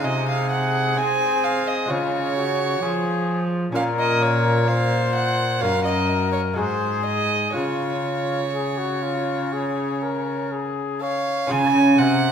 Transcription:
0.00 C3 G#3 D#4 G#4 D#5
0.04 C3 G#4
0.29 F5
0.51 F#5
0.96 C4 G#5
1.44 F5
1.67 D#5
1.86 C#3 G#3 F4 G#4
1.90 C#3 F4 C#5
2.36 F#4
2.82 F3 G#4
3.72 A#2 C#4 F4 A#4 F5
3.77 A#2 A#4
4.00 D#5
4.23 C#5
4.69 C5 F5
5.15 F#5
5.59 F#2 C#4 F#4 A#4 F5
5.64 F#2
5.85 D#5
6.33 C#5
6.53 G#2 G#3 F#4 G#4 C5
6.59 G#2
7.05 D#5
7.52 C#3 G#3 F4 G#4 C#5
7.57 C#3
8.53 G#4
8.78 F#4
9.02 F4
9.53 G#4
10.03 A#4
10.51 G#4
11.02 C#5 F5
11.47 C#3 C#4 F4 G#4
11.51 C#3 G#5
11.98 C3 F#5

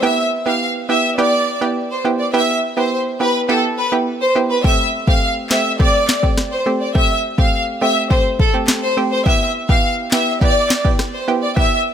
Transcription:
0.03 B3 E4 G4 E5
0.46 B3 E4 G4 F5
0.89 B3 E4 G4 E5
1.18 B3 E4 G4 D5
1.61 B3 E4 G4
1.90 C5
2.05 B3 E4 G4
2.19 D5
2.33 B3 E4 G4 E5
2.77 B3 E4 G4 C5
3.20 B3 E4 G4 B4
3.49 B3 E4 G4 A4
3.78 B4
3.92 B3 E4 G4
4.21 C5
4.35 B3 E4 G4
4.50 B4
4.64 A3 C4 G4 E5, kick
5.08 A3 C4 G4 F5, kick
5.50 A3 C4 G4 E5, snare, clap
5.79 A3 C4 G4 D5, kick
6.08 snare, clap
6.23 A3 C4 G4, kick
6.38 cross-stick, snare
6.52 C5
6.66 A3 C4 G4
6.81 D5
6.95 A3 C4 G4 E5, kick
7.38 A3 C4 G4 F5, kick
7.82 A3 C4 G4 E5
8.10 A3 C4 G4 C5, kick
8.39 A4, kick
8.54 A3 C4 G4
8.67 cross-stick, snare, clap
8.82 C5
8.97 A3 C4 G4
9.12 C5
9.26 B3 E4 G4 E5, kick
9.69 B3 E4 G4 F5, kick
10.11 B3 E4 G4 E5, snare, clap
10.41 B3 E4 G4 D5, kick
10.70 snare, clap
10.84 B3 E4 G4, kick
10.99 cross-stick, snare
11.13 C5
11.28 B3 E4 G4
11.42 D5
11.56 B3 E4 G4 E5, kick

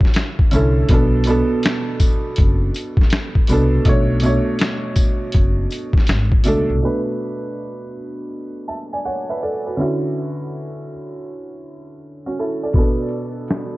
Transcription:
Already playing: D3 C#4 E4 F4 F#4
0.01 kick
0.05 snare
0.14 finger snap, snare, closed hi-hat
0.39 kick
0.51 C2 D3 C#4 E4, closed hi-hat, tambourine
0.56 A4
0.89 B1 B2 B3 D4, kick, closed hi-hat
0.94 A4
1.24 B2 B3, closed hi-hat, tambourine
1.29 D4 A4
1.63 finger snap, snare, closed hi-hat
2.00 kick, closed hi-hat, tambourine
2.36 F#1, kick, closed hi-hat
2.74 closed hi-hat, tambourine
2.97 kick
3.01 snare
3.10 finger snap, snare, closed hi-hat
3.35 kick
3.47 C2 B2 B3 D4, closed hi-hat, tambourine
3.52 A4
3.85 B1 B2 A3 D4, kick, closed hi-hat
3.89 C#5
4.20 B2 A3, closed hi-hat, tambourine
4.25 D4 C#5
4.59 finger snap, snare, closed hi-hat
4.96 kick, closed hi-hat, tambourine
5.32 F#1, kick, closed hi-hat
5.71 closed hi-hat, tambourine
5.93 kick
5.98 snare
6.07 G#1, finger snap, snare, closed hi-hat
6.32 kick
6.44 C#2 B2 A3 D4, closed hi-hat, tambourine
6.48 A4
6.70 C2
6.81 B2 A3 D4
6.85 B4
8.68 E5 A5
8.93 D5 G#5
9.05 C#5 F#5
9.30 B4 E5
9.43 A4 D5
9.67 F#4 B4
9.77 D3 C#4 E4
9.81 F#4
12.26 C#4 F#4
12.39 E4 A4
12.63 A4 D5
12.73 B2 B3 D4, kick, closed hi-hat
12.78 A4
13.09 closed hi-hat
13.48 finger snap, snare, closed hi-hat

